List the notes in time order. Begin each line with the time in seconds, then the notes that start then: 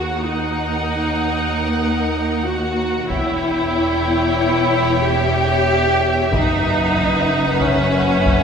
Already playing: D#2 F#4 A#4 F#5
0.19 D#4
2.46 F#4
3.10 E1 E2 E4 C#5 E5 G5, taiko
5.04 G4
6.32 F#1 F#2 D#4 B4 F#5, taiko
6.96 taiko
7.61 C#4, taiko
8.26 taiko